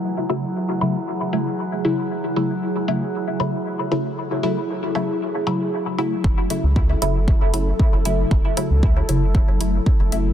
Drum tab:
HH |-x-x-x-x|-x-x-x-x|-x-x-x-x|-x-x-x-x|
BD |--------|--------|--------|o-o-o-o-|

HH |-x-x-x-x|
BD |o-o-o-o-|